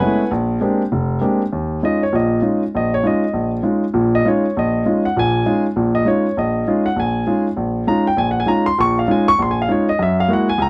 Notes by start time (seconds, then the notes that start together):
Already playing: B4 F#5 G#5 B5
0.02 G#3 A3 B3 C#4 E4
0.31 A#1
0.61 G#3 A#3 C4 D4 G4
0.92 F1
1.21 G#3 A#3 C4 D4 G4
1.52 D#2
1.83 G#3 C#4 D#4 F4 D#5
2.03 C#5
2.13 A#1 A#2 D#5
2.42 G#3 C#4 D#4 F4
2.75 A#1 D#5
2.94 C#5
3.04 G#3 C#4 D#4 F4 D#5
3.33 A#1
3.63 G#3 C#4 D#4 F4
3.94 A#1 A#2
4.15 D#5
4.25 G#3 C#4 D#4 F4 C#5
4.57 A#1 D#5
4.85 G#3 C#4 D#4 F4
5.05 F#5
5.16 A#1 A#2 G#5
5.46 G#3 C#4 D#4 F4
5.76 A#1 A#2
5.95 D#5
6.05 G#3 C#4 D#4 F4 C#5
6.37 A#1 D#5
6.68 G#3 C#4 D#4 F4
6.86 F#5
6.96 A#1 G#5
7.27 G#3 C#4 D#4 F4
7.57 A#1
7.87 G#3 C#4 D#4 F4 A#5
8.07 G5
8.17 A#1 G#5
8.31 F#5
8.40 G#5
8.46 G#3 C#4 D#4 F4 A#5
8.66 C6
8.78 A#1 A#2 C#6
8.99 F5
9.08 G#3 C#4 D#4 F4 G#5
9.28 C#6
9.38 A#1 C6
9.51 G#5
9.62 F5
9.68 G#3 C#4 D#4 F4 C#5
9.89 D#5
9.99 F#2 E5
10.20 F5
10.28 G#3 A#3 E4 F#4
10.33 F#5
10.49 G#5
10.58 C#2 A#5